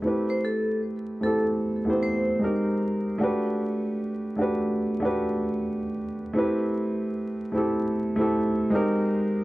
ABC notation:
X:1
M:4/4
L:1/16
Q:"Swing 16ths" 1/4=76
K:Ador
V:1 name="Vibraphone"
z c A2 z2 A z3 c2 z4 | z16 | z16 |]
V:2 name="Upright piano"
[A,CEGB]4 z2 [A,CEGA]2 z [A,B,CEGc]3 [^G,^B,^D=G_B]3 z | [A,DFGB]4 z2 [A,DFGB]2 z [A,DFGB]4- [A,DFGB] z2 | [A,CEGB]4 z2 [A,CEGA]2 z [A,CEGA]3 [^G,^B,^D=G_B]3 z |]